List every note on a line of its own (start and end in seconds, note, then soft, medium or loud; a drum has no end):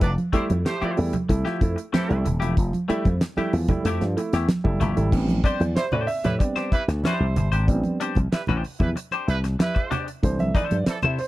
0.01 0.15 F1 loud
0.01 0.18 F3 medium
0.01 0.12 D4 loud
0.01 0.12 B4 loud
0.01 0.12 D5 loud
0.01 kick loud
0.01 closed hi-hat medium
0.01 muted conga soft
0.18 closed hi-hat soft
0.18 high conga medium
0.33 0.50 G3 loud
0.33 0.50 A3 medium
0.33 0.48 A3 medium
0.33 0.44 A3 medium
0.33 0.48 E4 loud
0.33 0.51 E4 medium
0.33 0.44 G4 medium
0.33 0.51 G4 loud
0.33 0.43 C5 medium
0.33 muted slap bass stroke soft
0.33 kick medium
0.33 closed hi-hat medium
0.49 0.64 F2 medium
0.49 0.56 A3 soft
0.49 0.56 E4 soft
0.49 closed hi-hat medium
0.49 high conga medium
0.65 0.91 A3 medium
0.65 0.72 A3 soft
0.65 0.72 E4 soft
0.65 0.91 G4 medium
0.65 0.91 C5 loud
0.65 muted clean electric guitar stroke soft
0.65 snare loud
0.65 closed hi-hat medium
0.81 0.97 F3 medium
0.81 0.97 A3 medium
0.81 0.97 E4 medium
0.81 0.98 G4 medium
0.81 muted slap bass stroke soft
0.81 closed hi-hat soft
0.81 muted conga soft
0.97 1.12 E2 medium
0.97 1.13 G3 medium
0.97 1.14 A3 medium
0.97 1.14 E4 medium
0.97 muted clean electric guitar stroke soft
0.97 open hi-hat medium
1.13 muted clean electric guitar stroke medium
1.13 closed hi-hat medium
1.13 high conga medium
1.13 low conga medium
1.29 1.43 C2 medium
1.29 1.45 A3 medium
1.29 1.46 E4 medium
1.29 muted clean electric guitar stroke soft
1.29 kick medium
1.29 closed hi-hat medium
1.29 muted conga soft
1.45 1.62 F3 medium
1.45 1.60 A3 medium
1.45 1.61 E4 medium
1.45 1.61 G4 medium
1.45 snare soft
1.45 closed hi-hat soft
1.61 1.75 F2 loud
1.61 1.77 A3 medium
1.61 1.78 E4 medium
1.61 kick loud
1.61 closed hi-hat medium
1.76 muted clean electric guitar stroke soft
1.76 closed hi-hat medium
1.93 2.19 E3 medium
1.93 2.10 A3 medium
1.93 2.19 C4 medium
1.93 2.10 E4 loud
1.93 2.11 G4 medium
1.93 2.19 A4 medium
1.93 snare loud
1.93 closed hi-hat medium
1.93 muted conga soft
1.93 high conga medium
2.09 2.23 C2 medium
2.09 2.25 G3 medium
2.09 2.25 A3 medium
2.09 2.26 E4 medium
2.09 closed hi-hat soft
2.25 2.42 D#1 medium
2.25 muted clean electric guitar stroke soft
2.25 closed hi-hat medium
2.25 low conga medium
2.40 2.55 E1 medium
2.40 2.56 F3 medium
2.40 2.55 A3 medium
2.40 2.54 E4 medium
2.40 2.54 G4 medium
2.40 closed hi-hat medium
2.57 2.71 F1 loud
2.57 2.73 F3 medium
2.57 kick medium
2.57 closed hi-hat medium
2.57 muted conga soft
2.73 closed hi-hat soft
2.73 muted conga soft
2.73 high conga medium
2.88 3.05 G3 loud
2.88 3.06 A3 medium
2.88 3.04 A3 medium
2.88 3.06 E4 loud
2.88 3.04 E4 loud
2.88 3.06 G4 loud
2.88 muted slap bass stroke soft
2.88 closed hi-hat medium
3.05 3.19 F2 medium
3.05 3.12 A3 soft
3.05 3.12 E4 soft
3.05 kick medium
3.05 closed hi-hat soft
3.05 high conga medium
3.21 muted clean electric guitar stroke soft
3.21 snare loud
3.21 closed hi-hat medium
3.21 muted conga soft
3.37 3.53 G3 medium
3.37 3.53 A3 medium
3.37 3.53 E4 medium
3.37 3.54 G4 medium
3.37 muted slap bass stroke soft
3.37 closed hi-hat soft
3.37 high conga medium
3.53 3.67 E2 medium
3.53 3.69 F3 medium
3.53 muted clean electric guitar stroke soft
3.53 open hi-hat medium
3.68 3.85 G3 medium
3.68 3.82 A3 medium
3.68 3.83 E4 medium
3.68 muted clean electric guitar stroke soft
3.68 kick medium
3.68 closed hi-hat medium
3.68 high conga medium
3.68 low conga medium
3.84 3.99 F2 loud
3.84 4.00 A3 medium
3.84 4.02 A3 medium
3.84 4.01 E4 medium
3.84 4.03 E4 medium
3.84 4.03 G4 medium
3.84 closed hi-hat medium
4.00 4.15 G2 medium
4.00 4.17 F3 medium
4.00 snare soft
4.00 closed hi-hat soft
4.16 4.33 A3 medium
4.16 4.33 E4 medium
4.16 muted clean electric guitar stroke soft
4.16 closed hi-hat medium
4.33 4.47 E2 medium
4.33 4.47 A3 medium
4.33 4.47 E4 medium
4.33 4.47 G4 medium
4.33 snare soft
4.33 closed hi-hat medium
4.49 muted clean electric guitar stroke soft
4.49 snare loud
4.49 closed hi-hat medium
4.49 high conga medium
4.64 4.79 F#1 loud
4.64 4.80 G3 medium
4.64 4.81 A3 medium
4.64 4.81 E4 medium
4.64 muted clean electric guitar stroke soft
4.64 kick medium
4.64 muted conga soft
4.80 4.95 G1 medium
4.80 4.97 F3 medium
4.80 4.97 A3 loud
4.80 4.97 E4 medium
4.80 4.96 G4 medium
4.80 closed hi-hat medium
4.80 low conga medium
4.97 5.11 G#1 medium
4.97 5.11 G3 medium
4.97 5.13 A3 medium
4.97 5.13 E4 medium
4.97 muted clean electric guitar stroke soft
4.97 closed hi-hat medium
5.12 5.40 A1 loud
5.12 5.55 G3 medium
5.12 5.55 B3 soft
5.12 5.55 C4 soft
5.12 5.56 D4 medium
5.12 kick loud
5.12 crash medium
5.29 closed hi-hat soft
5.29 high conga medium
5.44 5.61 D4 medium
5.44 5.62 G4 medium
5.44 5.62 C5 loud
5.44 5.77 D5 loud
5.44 kick loud
5.44 closed hi-hat medium
5.60 5.74 E2 medium
5.60 closed hi-hat soft
5.60 high conga medium
5.76 5.86 G3 medium
5.76 5.86 E4 medium
5.76 5.86 C5 medium
5.76 5.93 C5 medium
5.76 muted slap bass stroke soft
5.76 muted clean electric guitar stroke soft
5.76 snare loud
5.76 closed hi-hat medium
5.76 muted conga soft
5.92 6.06 A2 loud
5.92 6.07 D4 medium
5.92 6.08 G4 medium
5.92 6.09 C5 medium
5.92 6.09 D5 medium
5.92 low conga medium
6.07 6.41 E5 medium
6.07 muted clean electric guitar stroke soft
6.07 open hi-hat medium
6.24 6.38 A2 medium
6.24 6.34 G3 medium
6.24 6.34 E4 medium
6.24 6.34 B4 medium
6.24 muted clean electric guitar stroke medium
6.24 closed hi-hat medium
6.24 high conga medium
6.24 low conga medium
6.39 6.69 G3 soft
6.39 6.69 B3 soft
6.39 6.69 C4 soft
6.39 6.69 D4 soft
6.39 7.95 D5 medium
6.39 muted clean electric guitar stroke soft
6.39 kick loud
6.39 closed hi-hat medium
6.39 muted conga soft
6.56 6.72 D4 medium
6.56 6.73 G4 medium
6.56 6.73 C5 medium
6.56 snare soft
6.56 closed hi-hat soft
6.56 muted conga soft
6.72 6.82 G3 loud
6.72 6.82 E4 medium
6.72 6.82 B4 loud
6.72 muted slap bass stroke soft
6.72 muted clean electric guitar stroke soft
6.72 kick loud
6.72 closed hi-hat medium
6.88 7.02 D2 medium
6.88 muted clean electric guitar stroke soft
6.88 snare soft
6.88 closed hi-hat medium
7.04 7.49 G3 medium
7.04 7.25 D4 medium
7.04 7.50 E4 medium
7.04 7.25 G4 medium
7.04 7.50 C5 loud
7.04 7.26 C5 medium
7.04 snare loud
7.04 closed hi-hat medium
7.04 muted conga soft
7.04 high conga medium
7.20 7.34 C2 loud
7.36 7.50 G1 medium
7.36 muted clean electric guitar stroke soft
7.36 closed hi-hat medium
7.36 low conga medium
7.52 7.66 G#1 medium
7.52 7.66 D4 soft
7.52 7.66 G4 medium
7.52 7.65 C5 medium
7.52 closed hi-hat medium
7.67 7.82 A1 loud
7.67 8.10 G3 medium
7.67 8.10 B3 soft
7.67 8.11 C4 medium
7.67 8.11 D4 medium
7.67 kick loud
7.67 closed hi-hat medium
7.67 muted conga soft
7.83 closed hi-hat soft
7.83 muted conga soft
7.83 high conga medium
8.00 8.17 D4 medium
8.00 8.17 G4 medium
8.00 8.18 C5 medium
8.00 closed hi-hat medium
8.15 8.30 C2 medium
8.15 kick medium
8.15 closed hi-hat soft
8.15 high conga medium
8.31 8.42 G3 medium
8.31 8.42 E4 medium
8.31 8.41 B4 medium
8.31 muted slap bass stroke medium
8.31 muted clean electric guitar stroke soft
8.31 snare loud
8.31 closed hi-hat medium
8.31 muted conga soft
8.47 8.62 A1 medium
8.47 8.63 D4 medium
8.47 8.63 G4 medium
8.47 8.64 C5 medium
8.47 closed hi-hat soft
8.47 muted conga soft
8.47 low conga medium
8.64 muted clean electric guitar stroke soft
8.64 open hi-hat medium
8.79 8.94 E2 medium
8.79 8.90 G3 medium
8.79 8.90 E4 medium
8.79 8.90 B4 medium
8.79 muted clean electric guitar stroke soft
8.79 kick medium
8.79 closed hi-hat medium
8.79 high conga medium
8.79 low conga medium
8.96 muted clean electric guitar stroke soft
8.96 closed hi-hat medium
8.96 muted conga soft
9.11 9.27 D4 medium
9.11 9.28 G4 medium
9.11 9.28 C5 medium
9.11 closed hi-hat soft
9.11 muted conga soft
9.27 9.55 C2 medium
9.27 9.38 G3 loud
9.27 9.38 E4 medium
9.27 9.38 B4 loud
9.27 muted clean electric guitar stroke soft
9.27 closed hi-hat medium
9.44 muted clean electric guitar stroke soft
9.44 snare soft
9.44 closed hi-hat medium
9.59 10.05 G3 medium
9.59 10.05 E4 medium
9.59 10.05 B4 loud
9.59 muted clean electric guitar stroke soft
9.59 snare loud
9.59 closed hi-hat medium
9.59 muted conga soft
9.59 high conga medium
9.75 muted clean electric guitar stroke soft
9.75 kick medium
9.75 closed hi-hat soft
9.75 muted conga soft
9.91 10.08 D4 medium
9.91 10.07 G4 medium
9.91 10.06 C5 medium
9.91 closed hi-hat medium
9.91 low conga medium
10.07 muted clean electric guitar stroke soft
10.07 closed hi-hat medium
10.23 10.51 C2 loud
10.23 10.65 E3 medium
10.23 10.66 A3 medium
10.23 10.66 D4 medium
10.23 10.40 C5 medium
10.23 kick loud
10.23 closed hi-hat medium
10.23 muted conga soft
10.39 10.55 E5 medium
10.39 closed hi-hat soft
10.39 muted conga soft
10.39 high conga medium
10.55 10.75 E4 medium
10.55 10.76 A4 loud
10.55 10.76 C5 loud
10.55 11.21 D5 loud
10.55 kick loud
10.55 closed hi-hat medium
10.71 10.85 G2 medium
10.71 closed hi-hat medium
10.71 high conga medium
10.86 10.97 E3 medium
10.86 10.97 C4 medium
10.86 10.98 A4 medium
10.86 muted clean electric guitar stroke soft
10.86 muted slap bass stroke medium
10.86 snare loud
10.86 closed hi-hat medium
11.02 11.17 C3 loud
11.02 11.18 E4 medium
11.02 11.19 A4 medium
11.02 11.20 C5 medium
11.02 closed hi-hat soft
11.02 muted conga soft
11.02 low conga medium
11.19 11.28 C5 medium
11.19 muted clean electric guitar stroke soft
11.19 open hi-hat medium